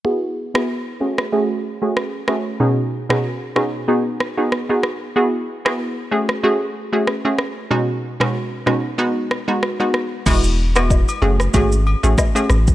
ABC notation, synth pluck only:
X:1
M:4/4
L:1/16
Q:"Swing 16ths" 1/4=94
K:E
V:1 name="Synth pluck"
[B,EFG] z2 [B,EFG] z2 [A,CFG] z [A,CFG] z2 [A,CFG]3 [A,CFG]2 | [B,,CDFG] z2 [B,,CDFG] z2 [B,,CDFG] z [B,DFG] z2 [B,DFG] z [B,DFG] z2 | [B,EFG] z2 [B,EFG] z2 [A,CFG] z [A,CFG] z2 [A,CFG] z [A,CFG] z2 | [B,,G,CDF] z2 [B,,G,CDF] z2 [B,,G,CDF] z [G,B,DF] z2 [G,B,DF] z [G,B,DF] z2 |
[G,B,EF] z2 [G,B,EF] z2 [A,CFG] z [A,CFG] z2 [A,CFG] z [A,CFG] z2 |]